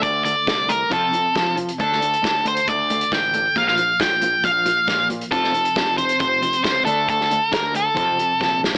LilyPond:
<<
  \new Staff \with { instrumentName = "Lead electric guitar" } { \time 4/4 \key d \minor \tempo 4 = 136 d''8 d''4 bes'8 a'4. r8 | a'4. c''8 d''4 g''4 | f''16 f''8. g''4 f''4. r8 | a'4. c''8 c''4 c''8 a'8 |
a'4 bes'8 a'2 r8 | }
  \new Staff \with { instrumentName = "Clean electric guitar" } { \clef bass \time 4/4 \key d \minor <d a>8 <d a>8 <d a>8 <d a>8 <f, c f>8 <f, c>8 <f, c>8 <f, c>8 | <d a d'>8 <d a>8 <d a>8 <d a>8 <d a>8 <d a>8 <d a>8 <d a>8 | <bes, f bes>8 <bes, f>8 <bes, f>8 <bes, f>8 <bes, f>8 <bes, f>8 <bes, f>8 <bes, f>8 | <f, c f>8 <f, c>8 <f, c>8 <f, c>8 <f, c>8 <f, c>8 <f, c>8 <d a d'>8 |
<d a>8 <d a>8 <d a>8 <d a>8 <f, c f>8 <f, c>8 <f, c>8 <f, c>8 | }
  \new Staff \with { instrumentName = "Fingered electric bass" } { \clef bass \time 4/4 \key d \minor d,4 c,4 f,4 f4 | d,4 d,4 d,4 a,,4 | bes,,4 bes,,4 bes,,4 bes,4 | f,,4 f,,4 f,,4 cis,8 d,8~ |
d,4 d,4 f,4 bes,,4 | }
  \new DrumStaff \with { instrumentName = "Drums" } \drummode { \time 4/4 <hh bd>8 hh8 <hh bd sn>8 hh8 <hh bd>8 hh8 <hh bd sn>8 hh16 hh16 | <hh bd>16 sn16 hh16 hh16 <hh bd sn>8 hh16 hh16 <hh bd>8 hh16 hh16 <hh bd sn>8 hh8 | <hh bd>16 sn16 hh8 <hh bd sn>8 hh8 <hh bd>8 hh8 <hh bd sn>8 hh16 hh16 | <hh bd>16 sn16 hh16 hh16 <hh bd sn>8 hh16 hh16 <hh bd>8 hh16 hh16 <hh bd sn>8 hh8 |
<hh bd>16 sn16 hh8 <hh bd sn>8 hh8 <hh bd>8 hh8 <bd sn>8 sn8 | }
>>